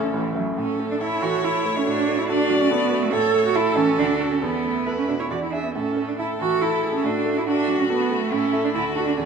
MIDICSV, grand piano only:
0, 0, Header, 1, 2, 480
1, 0, Start_track
1, 0, Key_signature, 3, "major"
1, 0, Tempo, 436364
1, 626, Time_signature, 3, 2, 24, 8
1, 1576, Tempo, 424028
1, 4456, Tempo, 439883
1, 7336, Tempo, 425834
1, 10308, End_track
2, 0, Start_track
2, 0, Title_t, "Grand piano"
2, 0, Program_c, 0, 0
2, 0, Control_c, 0, 64, 127
2, 0, Note_on_c, 0, 33, 50
2, 0, Note_on_c, 0, 45, 48
2, 0, Note_on_c, 0, 57, 40
2, 0, Note_on_c, 0, 61, 39
2, 0, Note_on_c, 0, 64, 47
2, 119, Note_off_c, 0, 57, 0
2, 119, Note_off_c, 0, 61, 0
2, 122, Note_off_c, 0, 64, 0
2, 148, Note_off_c, 0, 33, 0
2, 148, Note_on_c, 0, 33, 50
2, 149, Note_off_c, 0, 45, 0
2, 149, Note_on_c, 0, 45, 45
2, 381, Note_off_c, 0, 33, 0
2, 381, Note_off_c, 0, 45, 0
2, 386, Note_on_c, 0, 57, 41
2, 395, Note_on_c, 0, 61, 39
2, 396, Note_on_c, 0, 64, 43
2, 603, Note_off_c, 0, 57, 0
2, 608, Note_off_c, 0, 61, 0
2, 608, Note_off_c, 0, 64, 0
2, 631, Note_on_c, 0, 45, 51
2, 649, Control_c, 0, 64, 0
2, 850, Control_c, 0, 64, 127
2, 878, Note_on_c, 0, 57, 37
2, 1111, Note_on_c, 0, 64, 38
2, 1114, Note_on_c, 0, 69, 42
2, 1251, Note_off_c, 0, 57, 0
2, 1321, Note_off_c, 0, 64, 0
2, 1323, Note_off_c, 0, 69, 0
2, 1345, Note_on_c, 0, 52, 43
2, 1586, Note_on_c, 0, 64, 42
2, 1589, Note_on_c, 0, 69, 45
2, 1724, Note_off_c, 0, 52, 0
2, 1799, Note_off_c, 0, 64, 0
2, 1800, Note_off_c, 0, 69, 0
2, 1829, Note_on_c, 0, 57, 48
2, 2016, Note_off_c, 0, 45, 0
2, 2063, Note_off_c, 0, 57, 0
2, 2070, Note_on_c, 0, 45, 56
2, 2081, Control_c, 0, 64, 0
2, 2238, Control_c, 0, 64, 127
2, 2311, Note_on_c, 0, 57, 42
2, 2546, Note_on_c, 0, 66, 43
2, 2551, Note_on_c, 0, 69, 47
2, 2685, Note_off_c, 0, 57, 0
2, 2756, Note_off_c, 0, 66, 0
2, 2758, Note_off_c, 0, 69, 0
2, 2782, Note_on_c, 0, 54, 56
2, 3023, Note_on_c, 0, 66, 52
2, 3025, Note_on_c, 0, 69, 54
2, 3158, Note_off_c, 0, 54, 0
2, 3232, Note_off_c, 0, 66, 0
2, 3233, Note_off_c, 0, 69, 0
2, 3256, Note_on_c, 0, 57, 54
2, 3452, Note_off_c, 0, 45, 0
2, 3492, Note_off_c, 0, 57, 0
2, 3492, Note_on_c, 0, 45, 63
2, 3509, Control_c, 0, 64, 0
2, 3702, Control_c, 0, 64, 127
2, 3734, Note_on_c, 0, 57, 49
2, 3976, Note_on_c, 0, 64, 46
2, 3976, Note_on_c, 0, 69, 53
2, 4118, Note_off_c, 0, 57, 0
2, 4191, Note_off_c, 0, 64, 0
2, 4191, Note_off_c, 0, 69, 0
2, 4214, Note_on_c, 0, 52, 58
2, 4430, Note_off_c, 0, 45, 0
2, 4458, Note_off_c, 0, 52, 0
2, 4459, Note_on_c, 0, 38, 56
2, 4481, Control_c, 0, 64, 0
2, 4650, Control_c, 0, 64, 127
2, 4707, Note_on_c, 0, 69, 47
2, 4708, Note_on_c, 0, 66, 42
2, 4919, Note_off_c, 0, 66, 0
2, 4919, Note_off_c, 0, 69, 0
2, 4924, Note_off_c, 0, 38, 0
2, 4948, Note_on_c, 0, 40, 48
2, 4957, Control_c, 0, 64, 0
2, 5141, Control_c, 0, 64, 127
2, 5187, Note_on_c, 0, 57, 33
2, 5420, Note_on_c, 0, 64, 32
2, 5425, Note_on_c, 0, 69, 34
2, 5569, Note_off_c, 0, 57, 0
2, 5638, Note_off_c, 0, 64, 0
2, 5640, Note_off_c, 0, 69, 0
2, 5662, Note_on_c, 0, 47, 36
2, 5880, Note_off_c, 0, 40, 0
2, 5903, Note_off_c, 0, 47, 0
2, 5908, Note_on_c, 0, 40, 44
2, 5925, Control_c, 0, 64, 0
2, 6098, Control_c, 0, 64, 127
2, 6146, Note_on_c, 0, 64, 34
2, 6149, Note_on_c, 0, 68, 36
2, 6362, Note_off_c, 0, 64, 0
2, 6365, Note_off_c, 0, 68, 0
2, 6374, Note_off_c, 0, 40, 0
2, 6396, Note_on_c, 0, 45, 47
2, 6408, Control_c, 0, 64, 0
2, 6588, Control_c, 0, 64, 127
2, 6628, Note_on_c, 0, 57, 38
2, 6869, Note_on_c, 0, 64, 34
2, 6875, Note_on_c, 0, 69, 37
2, 7009, Note_off_c, 0, 57, 0
2, 7080, Note_off_c, 0, 64, 0
2, 7084, Note_off_c, 0, 69, 0
2, 7112, Note_on_c, 0, 52, 43
2, 7345, Note_on_c, 0, 69, 43
2, 7347, Note_on_c, 0, 64, 37
2, 7489, Note_off_c, 0, 52, 0
2, 7560, Note_off_c, 0, 69, 0
2, 7561, Note_off_c, 0, 64, 0
2, 7587, Note_on_c, 0, 57, 40
2, 7782, Note_off_c, 0, 45, 0
2, 7813, Note_on_c, 0, 45, 54
2, 7825, Note_off_c, 0, 57, 0
2, 7843, Control_c, 0, 64, 0
2, 8041, Control_c, 0, 64, 127
2, 8058, Note_on_c, 0, 57, 41
2, 8305, Note_on_c, 0, 66, 41
2, 8308, Note_on_c, 0, 69, 45
2, 8444, Note_off_c, 0, 57, 0
2, 8519, Note_off_c, 0, 66, 0
2, 8521, Note_off_c, 0, 69, 0
2, 8535, Note_on_c, 0, 54, 48
2, 8777, Note_on_c, 0, 66, 46
2, 8781, Note_on_c, 0, 69, 47
2, 8920, Note_off_c, 0, 54, 0
2, 8992, Note_off_c, 0, 66, 0
2, 8995, Note_off_c, 0, 69, 0
2, 9019, Note_on_c, 0, 57, 46
2, 9209, Note_off_c, 0, 45, 0
2, 9257, Note_off_c, 0, 57, 0
2, 9259, Note_on_c, 0, 45, 53
2, 9279, Control_c, 0, 64, 0
2, 9468, Control_c, 0, 64, 127
2, 9493, Note_on_c, 0, 64, 39
2, 9497, Note_on_c, 0, 69, 41
2, 9708, Note_off_c, 0, 64, 0
2, 9710, Note_off_c, 0, 69, 0
2, 9719, Note_off_c, 0, 45, 0
2, 9731, Note_on_c, 0, 38, 47
2, 9755, Control_c, 0, 64, 0
2, 9952, Control_c, 0, 64, 127
2, 9972, Note_on_c, 0, 62, 43
2, 9975, Note_on_c, 0, 69, 45
2, 10192, Note_off_c, 0, 62, 0
2, 10194, Note_off_c, 0, 69, 0
2, 10202, Note_off_c, 0, 38, 0
2, 10225, Note_on_c, 0, 40, 48
2, 10237, Control_c, 0, 64, 0
2, 10308, Note_off_c, 0, 40, 0
2, 10308, End_track
0, 0, End_of_file